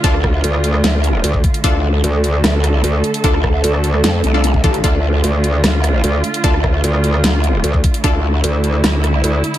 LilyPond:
<<
  \new Staff \with { instrumentName = "Synth stab" } { \time 4/4 \key d \minor \tempo 4 = 150 <d' f' a'>16 r2. r8. | <d' f' a'>16 r2. r8. | <d' f' a'>16 r2 r8 <d' f' a'>16 r8 <d' f' a'>16 r16 | <d' f' a'>16 r2. r8. |
<d' f' a'>16 r2. r8. | <d' f' a'>16 r2. r8. | }
  \new Staff \with { instrumentName = "String section" } { \time 4/4 \key d \minor << { f'1 | a'1~ | a'1 | f'1~ |
f'1 | e'1 | } \\ { <d a>1~ | <d a>1~ | <d a>1~ | <d a>1~ |
<d a>1~ | <d a>1 | } >> }
  \new Staff \with { instrumentName = "Wobble bass" } { \clef bass \time 4/4 \key d \minor d,4 r4 d,4 r4 | d,4 r4 d,4 r4 | d,4 r4 f,8 c,4 r8 | d,4 r4 d,4 r4 |
d,4 r4 d,4 r4 | d,4 r4 d,4 r4 | }
  \new Staff \with { instrumentName = "Wobble bass" } { \clef bass \time 4/4 \key d \minor r4 d,4 r4 d,8 r8 | r4 d,4 r4 d,8 r8 | r4 d,4 r4. a,,8 | r4 d,4 r4 d,8 r8 |
r4 d,4 r4 d,8 r8 | r4 d,4 r4 d,8 r8 | }
  \new DrumStaff \with { instrumentName = "Drums" } \drummode { \time 4/4 <hh bd>16 ss16 <bd ss>8 hh16 ss16 hh16 ss16 <hh sn>8 hh8 hh16 bd16 <hh bd>16 hh16 | <hh bd>4 hh8 hh8 <hh ss sn>8 <hh ss>8 hh8 hh16 hh16 | <hh bd>16 ss16 <bd ss>8 hh16 ss16 hh16 ss16 <hh sn>8 hh8 hh16 bd16 <hh bd>16 hh16 | <hh bd>4 hh8 hh8 <hh ss sn>8 <hh ss>8 hh8 hh16 hh16 |
<hh bd>16 ss16 <bd ss>8 hh16 ss16 hh16 ss16 <hh sn>8 hh8 hh16 bd16 <hh bd>16 hh16 | <hh bd>4 hh8 hh8 <hh ss sn>8 <hh ss>8 hh8 hh16 hh16 | }
>>